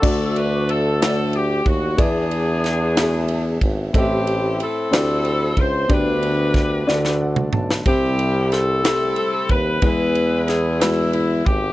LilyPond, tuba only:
\new Staff \with { instrumentName = "Tuba" } { \clef bass \time 6/8 \key d \mixolydian \tempo 4. = 61 d,2~ d,8 ees,8 | e,2~ e,8 gis,,8 | a,,4 r8 d,4 cis,8 | d,4. d,4 b,,8 |
c,2 r8 ees,8 | e,2~ e,8 gis,,8 | }